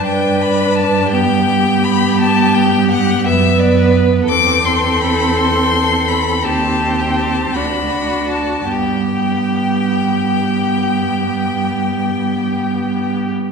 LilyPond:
<<
  \new Staff \with { instrumentName = "Violin" } { \time 12/8 \key g \major \tempo 4. = 55 g''8 b''8 a''8 g''4 b''8 a''8 g''8 fis''8 e''8 d''8 r8 | d'''8 c'''8 b''8 c'''4 b''8 a''8. g''16 a''8 b''4 a''8 | g''1~ g''4. r8 | }
  \new Staff \with { instrumentName = "Violin" } { \time 12/8 \key g \major b'4. g'2. b'4. | a'2. g'4. fis'4. | g'1~ g'4.~ g'16 r16 | }
  \new Staff \with { instrumentName = "Viola" } { \time 12/8 \key g \major d'4. b2. b4. | c'2. c'4. d'4. | b1~ b4.~ b16 r16 | }
  \new Staff \with { instrumentName = "Cello" } { \clef bass \time 12/8 \key g \major g,1~ g,8 fis,4. | e,2. ees,4. d,4. | g,1~ g,4.~ g,16 r16 | }
>>